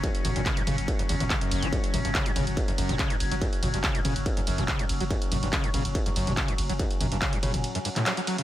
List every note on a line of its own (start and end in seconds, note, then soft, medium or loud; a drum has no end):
0.00 0.10 F#2 medium
0.00 8.43 F#3 medium
0.00 8.43 C#4 medium
0.00 kick loud
0.00 closed hi-hat medium
0.00 ride medium
0.15 closed hi-hat medium
0.25 0.35 F#1 loud
0.25 0.31 F#2 medium
0.25 open hi-hat loud
0.25 mid tom medium
0.25 ride medium
0.36 0.46 F#1 medium
0.36 0.41 G2 medium
0.36 closed hi-hat medium
0.36 mid tom medium
0.46 0.58 C#3 loud
0.46 kick loud
0.46 clap loud
0.46 closed hi-hat medium
0.46 ride medium
0.57 0.62 G2 loud
0.57 closed hi-hat medium
0.67 0.77 F#1 loud
0.67 0.76 C#3 medium
0.67 open hi-hat loud
0.67 mid tom medium
0.67 ride medium
0.78 0.88 F#1 medium
0.78 closed hi-hat medium
0.88 kick loud
0.88 closed hi-hat medium
0.88 ride medium
0.99 1.02 F#2 loud
0.99 closed hi-hat medium
1.09 1.20 F#1 medium
1.09 1.15 E2 loud
1.09 open hi-hat loud
1.09 ride medium
1.20 1.30 F#1 medium
1.20 1.24 E2 loud
1.20 closed hi-hat medium
1.20 mid tom medium
1.30 1.39 C#3 medium
1.30 kick loud
1.30 clap loud
1.30 closed hi-hat medium
1.30 ride medium
1.41 1.64 F#2 medium
1.41 closed hi-hat medium
1.51 1.62 F#1 loud
1.51 open hi-hat loud
1.51 ride medium
1.62 1.72 F#1 medium
1.62 1.68 F#3 loud
1.62 closed hi-hat medium
1.72 1.79 F#2 medium
1.72 kick loud
1.72 closed hi-hat medium
1.72 ride medium
1.84 closed hi-hat medium
1.93 2.04 F#1 loud
1.93 2.00 F#2 medium
1.93 open hi-hat loud
1.93 mid tom medium
1.93 ride medium
2.05 2.15 F#1 medium
2.05 2.10 G2 medium
2.05 closed hi-hat medium
2.15 2.27 C#3 loud
2.15 kick loud
2.15 clap loud
2.15 closed hi-hat medium
2.15 ride medium
2.26 2.31 G2 loud
2.26 closed hi-hat medium
2.36 2.46 F#1 loud
2.36 2.45 C#3 medium
2.36 open hi-hat loud
2.36 mid tom loud
2.36 ride medium
2.47 2.57 F#1 medium
2.47 closed hi-hat medium
2.57 kick loud
2.57 closed hi-hat medium
2.57 ride medium
2.68 2.71 F#2 loud
2.68 closed hi-hat medium
2.78 2.89 F#1 loud
2.78 2.91 F#2 medium
2.78 open hi-hat loud
2.78 ride medium
2.89 2.99 F#1 medium
2.89 2.95 G2 loud
2.89 closed hi-hat medium
2.89 mid tom medium
2.99 3.12 C#3 loud
2.99 kick loud
2.99 clap loud
2.99 closed hi-hat medium
2.99 ride medium
3.10 3.16 G2 loud
3.10 closed hi-hat medium
3.20 3.31 F#1 loud
3.20 open hi-hat loud
3.20 ride medium
3.31 3.41 F#1 medium
3.31 3.35 F#3 medium
3.31 closed hi-hat medium
3.42 3.48 F#2 medium
3.42 kick loud
3.42 closed hi-hat medium
3.42 ride medium
3.53 closed hi-hat medium
3.63 3.73 F#1 loud
3.63 3.69 F#2 medium
3.63 open hi-hat loud
3.63 mid tom medium
3.63 ride medium
3.74 3.84 F#1 medium
3.74 3.79 G2 medium
3.74 closed hi-hat medium
3.84 3.96 C#3 loud
3.84 kick loud
3.84 clap loud
3.84 closed hi-hat medium
3.84 ride medium
3.95 4.00 G2 loud
3.95 closed hi-hat medium
4.05 4.15 F#1 loud
4.05 4.14 C#3 medium
4.05 open hi-hat loud
4.05 mid tom loud
4.05 ride medium
4.16 4.26 F#1 medium
4.16 closed hi-hat medium
4.26 kick loud
4.26 closed hi-hat medium
4.26 ride medium
4.37 4.40 F#2 loud
4.37 closed hi-hat medium
4.47 4.58 F#1 medium
4.47 4.60 F#2 medium
4.47 open hi-hat loud
4.47 ride medium
4.58 4.68 F#1 medium
4.58 4.64 G2 loud
4.58 closed hi-hat medium
4.58 mid tom medium
4.68 4.81 C#3 loud
4.68 kick loud
4.68 clap loud
4.68 closed hi-hat medium
4.68 ride medium
4.79 4.85 G2 loud
4.79 closed hi-hat medium
4.89 5.00 F#1 loud
4.89 open hi-hat loud
4.89 ride medium
5.00 5.10 F#1 medium
5.00 5.04 F#3 medium
5.00 closed hi-hat medium
5.11 5.17 F#2 medium
5.11 kick loud
5.11 closed hi-hat medium
5.11 ride medium
5.22 closed hi-hat medium
5.32 5.42 F#1 loud
5.32 5.38 F#2 medium
5.32 open hi-hat loud
5.32 mid tom medium
5.32 ride medium
5.43 5.53 F#1 medium
5.43 5.48 G2 medium
5.43 closed hi-hat medium
5.53 5.65 C#3 loud
5.53 kick loud
5.53 clap loud
5.53 closed hi-hat medium
5.53 ride medium
5.64 5.69 G2 loud
5.64 closed hi-hat medium
5.74 5.84 F#1 loud
5.74 5.83 C#3 medium
5.74 open hi-hat loud
5.74 mid tom loud
5.74 ride medium
5.85 5.95 F#1 medium
5.85 closed hi-hat medium
5.95 kick loud
5.95 closed hi-hat medium
5.95 ride medium
6.06 6.09 F#2 loud
6.06 closed hi-hat medium
6.16 6.27 F#1 loud
6.16 6.29 F#2 medium
6.16 open hi-hat loud
6.16 ride medium
6.27 6.37 F#1 medium
6.27 6.33 G2 loud
6.27 closed hi-hat medium
6.27 mid tom medium
6.37 6.50 C#3 loud
6.37 kick loud
6.37 clap loud
6.37 closed hi-hat medium
6.37 ride medium
6.48 6.54 G2 loud
6.48 closed hi-hat medium
6.58 6.69 F#1 loud
6.58 open hi-hat loud
6.58 ride medium
6.69 6.79 F#1 medium
6.69 6.73 F#3 medium
6.69 closed hi-hat medium
6.79 6.86 F#2 medium
6.79 kick loud
6.79 closed hi-hat medium
6.79 ride medium
6.91 closed hi-hat medium
7.00 7.11 F#1 loud
7.00 7.07 F#2 medium
7.00 open hi-hat loud
7.00 mid tom medium
7.00 ride medium
7.12 7.22 F#1 medium
7.12 7.17 G2 medium
7.12 closed hi-hat medium
7.22 7.34 C#3 loud
7.22 kick loud
7.22 clap loud
7.22 closed hi-hat medium
7.22 ride medium
7.33 7.38 G2 loud
7.33 closed hi-hat medium
7.43 7.53 F#1 loud
7.43 7.52 C#3 medium
7.43 open hi-hat loud
7.43 mid tom loud
7.43 ride medium
7.54 7.64 F#1 medium
7.54 closed hi-hat medium
7.54 mid tom medium
7.64 closed hi-hat medium
7.64 ride medium
7.75 7.78 F#2 loud
7.75 closed hi-hat medium
7.85 7.89 G2 medium
7.85 open hi-hat loud
7.85 ride medium
7.96 8.05 A2 loud
7.96 clap soft
7.96 closed hi-hat medium
7.96 mid tom medium
8.06 8.12 F#3 medium
8.06 clap loud
8.06 closed hi-hat medium
8.06 ride medium
8.17 8.21 F#3 medium
8.17 closed hi-hat medium
8.27 8.37 F#3 medium
8.27 open hi-hat loud
8.27 ride medium
8.38 8.43 C#3 medium
8.38 closed hi-hat medium